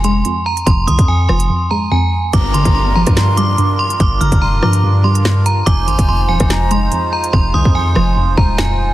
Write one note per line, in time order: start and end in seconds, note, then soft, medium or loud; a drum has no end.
0.00 0.23 F1 loud
0.00 0.24 F2 medium
0.00 0.25 D#3 medium
0.00 0.67 F3 loud
0.04 1.08 G#3 medium
0.04 0.44 C6 medium
0.04 closed hi-hat medium
0.25 0.65 F2 medium
0.25 closed hi-hat medium
0.46 0.64 A#5 medium
0.57 closed hi-hat medium
0.66 0.87 F1 loud
0.66 1.07 F2 loud
0.66 0.85 C6 loud
0.66 kick loud
0.66 closed hi-hat medium
0.87 0.98 C2 loud
0.87 1.92 D#3 medium
0.87 1.06 D#6 loud
0.87 closed hi-hat medium
0.99 1.28 F2 loud
0.99 kick loud
0.99 closed hi-hat medium
1.08 1.49 F2 medium
1.08 1.27 G#5 medium
1.29 1.49 F1 loud
1.29 2.33 F3 medium
1.29 1.68 C6 medium
1.29 cross-stick medium
1.40 closed hi-hat medium
1.50 1.90 F2 medium
1.71 2.33 G#3 medium
1.71 1.89 A#5 medium
1.92 2.33 F2 loud
1.92 2.31 G#5 medium
2.33 2.64 G1 loud
2.33 2.74 G2 medium
2.33 5.63 G3 medium
2.33 5.63 D4 medium
2.33 8.94 F4 medium
2.33 5.63 A#4 medium
2.33 3.13 A#5 loud
2.33 2.52 D6 loud
2.33 kick loud
2.33 closed hi-hat medium
2.33 downlifter medium
2.54 3.58 D3 medium
2.54 2.73 C6 loud
2.54 closed hi-hat medium
2.65 3.05 G1 loud
2.65 kick loud
2.65 closed hi-hat medium
2.75 3.16 G2 medium
2.75 2.93 C6 medium
2.96 4.00 F3 medium
2.96 3.35 A#5 medium
3.07 3.56 G2 loud
3.07 kick loud
3.07 cross-stick medium
3.07 closed hi-hat medium
3.17 3.57 G2 medium
3.17 3.96 C6 loud
3.17 finger snap medium
3.17 snare loud
3.37 4.42 G3 medium
3.37 3.77 D6 medium
3.37 closed hi-hat medium
3.58 3.99 G2 medium
3.58 closed hi-hat medium
3.79 3.98 C6 loud
3.90 closed hi-hat medium
4.00 4.20 G1 loud
4.00 4.41 G2 medium
4.00 4.19 D6 loud
4.00 kick loud
4.00 closed hi-hat medium
4.21 4.32 G1 loud
4.21 5.25 D3 medium
4.21 4.41 A#5 medium
4.21 4.39 F6 medium
4.21 closed hi-hat medium
4.32 4.61 F1 loud
4.32 kick loud
4.32 closed hi-hat medium
4.42 4.82 G2 medium
4.42 4.60 A#5 medium
4.42 4.62 C6 medium
4.62 5.63 G2 loud
4.62 5.67 F3 loud
4.62 4.82 A#5 medium
4.62 5.02 D6 medium
4.62 cross-stick medium
4.73 closed hi-hat medium
4.83 5.24 G2 medium
5.04 5.67 G3 medium
5.04 5.43 C6 medium
5.15 closed hi-hat medium
5.25 5.67 G2 medium
5.25 finger snap medium
5.25 snare loud
5.46 5.64 A#5 medium
5.46 closed hi-hat medium
5.66 5.89 F1 loud
5.66 6.07 F2 medium
5.66 8.94 G#3 medium
5.66 8.94 D#4 medium
5.66 8.94 C5 medium
5.66 6.46 G#5 loud
5.66 5.85 D6 loud
5.66 kick loud
5.66 closed hi-hat medium
5.88 5.98 G#1 loud
5.88 6.92 D#3 medium
5.88 6.06 C6 medium
5.88 closed hi-hat medium
5.99 6.31 F1 loud
5.99 kick loud
5.99 closed hi-hat medium
6.08 6.49 F2 medium
6.08 6.27 C6 medium
6.29 6.40 D#1 loud
6.29 7.33 F3 loud
6.29 6.68 G#5 medium
6.40 6.90 F1 loud
6.40 kick loud
6.40 cross-stick medium
6.40 closed hi-hat medium
6.50 6.91 F2 medium
6.50 7.29 A#5 loud
6.50 finger snap medium
6.50 snare loud
6.71 7.75 G#3 medium
6.71 7.10 C6 medium
6.71 closed hi-hat medium
6.92 7.32 F2 medium
6.92 closed hi-hat medium
7.13 7.31 A#5 medium
7.24 closed hi-hat medium
7.33 7.53 F1 loud
7.33 7.74 F2 loud
7.33 7.52 C6 loud
7.33 kick loud
7.54 7.65 C2 loud
7.54 8.58 D#3 medium
7.54 7.74 G#5 medium
7.54 7.73 D#6 loud
7.65 7.95 F2 loud
7.65 kick loud
7.75 8.15 F2 medium
7.75 7.94 G#5 medium
7.75 7.95 C6 medium
7.95 8.36 F1 loud
7.95 8.94 F3 medium
7.95 8.16 G#5 medium
7.95 8.35 C6 medium
7.95 cross-stick medium
8.16 8.57 F2 medium
8.37 8.94 D#1 loud
8.37 8.94 G#3 medium
8.37 8.56 A#5 medium
8.37 kick loud
8.58 8.94 F2 medium
8.58 8.94 G#5 medium
8.58 finger snap medium
8.58 snare loud